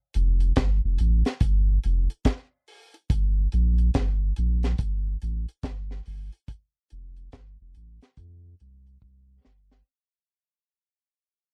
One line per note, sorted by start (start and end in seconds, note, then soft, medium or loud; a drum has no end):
0.14 0.52 F1 loud
0.14 closed hi-hat medium
0.40 closed hi-hat soft
0.56 0.81 G1 medium
0.56 kick loud
0.56 snare loud
0.56 closed hi-hat medium
0.84 0.98 F1 medium
0.98 1.23 A1 medium
0.98 closed hi-hat medium
1.25 snare medium
1.25 closed hi-hat medium
1.41 1.78 G1 loud
1.41 kick loud
1.41 closed hi-hat medium
1.84 2.08 F1 loud
1.84 closed hi-hat medium
2.10 closed hi-hat medium
2.25 kick loud
2.25 snare loud
2.25 closed hi-hat loud
2.68 open hi-hat medium
2.94 closed hi-hat medium
3.10 3.48 G1 loud
3.10 kick loud
3.10 closed hi-hat medium
3.52 3.90 A#1 loud
3.52 closed hi-hat medium
3.78 closed hi-hat soft
3.94 4.32 G1 medium
3.94 kick loud
3.94 snare loud
3.94 closed hi-hat medium
4.36 4.75 A#1 medium
4.36 closed hi-hat medium
4.63 snare medium
4.63 closed hi-hat medium
4.78 5.17 G1 loud
4.78 kick loud
4.78 closed hi-hat medium
5.22 5.46 A1 loud
5.22 closed hi-hat medium
5.49 closed hi-hat medium
5.63 6.01 G1 medium
5.63 kick loud
5.63 snare loud
5.63 closed hi-hat medium
5.91 snare medium
6.06 6.30 G1 medium
6.06 open hi-hat medium
6.33 closed hi-hat medium
6.48 kick loud
6.48 closed hi-hat medium
6.90 7.29 F1 loud
6.90 closed hi-hat medium
7.17 closed hi-hat soft
7.32 7.57 G1 medium
7.32 kick medium
7.32 snare loud
7.32 closed hi-hat medium
7.61 7.74 F1 medium
7.75 7.99 A1 medium
7.75 closed hi-hat medium
8.02 snare medium
8.02 closed hi-hat medium
8.17 8.55 F2 loud
8.17 kick loud
8.17 closed hi-hat medium
8.60 8.97 C2 loud
8.60 closed hi-hat medium
8.87 closed hi-hat medium
9.02 9.39 C2 medium
9.02 kick loud
9.45 9.82 G1 loud
9.45 snare medium
9.71 snare medium